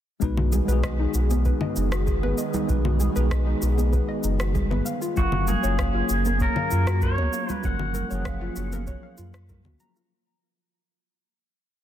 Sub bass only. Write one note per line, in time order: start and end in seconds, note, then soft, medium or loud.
0.22 0.61 B1 medium
0.68 1.07 B1 medium
1.14 1.53 B1 medium
1.77 2.25 F#1 medium
2.23 2.34 G#1 medium
2.69 3.08 B1 medium
3.16 3.55 B1 medium
3.62 4.01 B1 medium
4.24 4.72 F#1 medium
4.71 4.81 G#1 medium
5.18 5.56 F#1 medium
5.64 6.02 F#1 medium
6.10 6.49 F#1 medium
6.72 7.20 F#2 medium
7.18 7.29 C#2 medium
7.64 8.03 F#1 medium
8.11 8.49 F#1 loud
8.56 8.96 F#1 medium
9.19 9.67 F#2 medium
9.66 9.76 C#2 medium